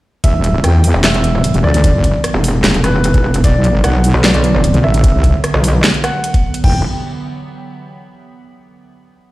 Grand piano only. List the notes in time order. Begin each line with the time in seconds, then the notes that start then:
0.24 E5
0.64 G5
1.04 E5
1.64 D5
2.84 B4
3.44 D5
3.84 F#5
4.24 D5
4.84 E5
6.04 F#5
6.64 G5